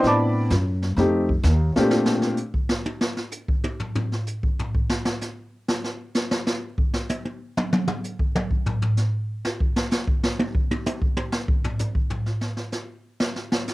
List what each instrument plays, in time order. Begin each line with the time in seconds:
Already playing: grand piano B3 C4 D4 E4
0.03 upright bass A2, brush sweep, kick, snare
0.07 grand piano D5 A5 B5 D6
0.50 upright bass F#2, kick, snare, hi-hat pedal
0.82 snare
0.97 upright bass F2, grand piano A3 C4 D#4 G4, brush sweep, kick, snare
1.29 kick
1.44 upright bass D#2, snare, hi-hat pedal
1.76 grand piano A#2 A3 C4 D4 G4, muted upright bass stroke, snare
1.91 snare
2.06 snare
2.22 snare
2.37 hi-hat pedal
2.54 kick
2.69 snare
2.86 high tom
3.01 snare
3.17 snare
3.31 hi-hat pedal
3.48 kick
3.64 high tom
3.80 floor tom
3.95 floor tom
4.12 snare
4.27 hi-hat pedal
4.43 kick
4.59 floor tom
4.75 kick
4.89 snare
5.05 snare
5.21 snare, hi-hat pedal
5.68 snare
5.84 snare
6.15 snare, hi-hat pedal
6.31 snare
6.47 snare
6.78 kick
6.94 snare
7.09 hi-hat pedal, high tom
7.25 high tom
7.57 mid tom
7.73 mid tom
7.88 mid tom
8.04 hi-hat pedal
8.19 kick
8.36 mid tom
8.51 kick
8.66 floor tom
8.82 floor tom
8.97 snare, hi-hat pedal
9.45 snare
9.60 kick
9.76 snare
9.91 snare, hi-hat pedal
10.07 kick
10.23 snare
10.39 high tom
10.55 kick
10.71 high tom
10.86 hi-hat pedal, high tom
11.02 kick
11.17 high tom
11.32 snare
11.48 kick
11.64 floor tom
11.79 floor tom, hi-hat pedal
11.95 kick
12.10 floor tom
12.26 snare
12.41 snare
12.57 snare
12.72 snare, hi-hat pedal
13.20 snare
13.36 snare
13.52 snare
13.68 snare, hi-hat pedal